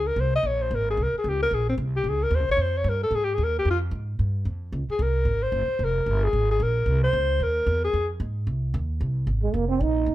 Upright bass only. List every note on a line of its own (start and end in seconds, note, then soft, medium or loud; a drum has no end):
0.00 0.15 C#2 medium
0.16 0.42 C2 medium
0.43 0.69 A#1 medium
0.71 0.97 G#1 medium
0.97 1.12 C2 medium
1.13 muted upright bass stroke soft
1.24 1.50 C#2 loud
1.51 1.77 A#1 medium
1.78 2.03 C2 loud
2.04 2.30 C#2 medium
2.31 2.40 D#2 medium
2.40 2.48 C#2 medium
2.49 2.56 A#1 medium
2.57 2.83 F2 medium
2.84 3.10 G2 loud
3.11 3.37 G#2 medium
3.38 3.64 D#2 medium
3.65 3.91 F2 medium
3.91 4.18 G#2 medium
4.19 4.45 G2 medium
4.45 4.71 F2 medium
4.72 4.88 C#2 medium
4.89 muted upright bass stroke soft
4.99 5.24 C2 medium
5.25 5.51 G#1 medium
5.52 5.67 F#1 medium
5.68 muted upright bass stroke soft
5.79 6.05 F1 medium
6.06 6.32 G1 medium
6.33 6.59 G#1 medium
6.60 6.85 A#1 loud
6.86 7.12 C2 medium
7.13 7.39 C#2 loud
7.40 7.66 D#2 medium
7.66 7.92 E2 medium
7.93 8.19 F2 medium
8.20 8.46 G#2 medium
8.47 8.73 C2 medium
8.74 9.00 D#2 loud
9.01 9.26 C2 medium
9.27 9.53 G#1 medium
9.54 9.80 F1 medium
9.80 10.06 A#1 medium
10.06 10.15 G#1 medium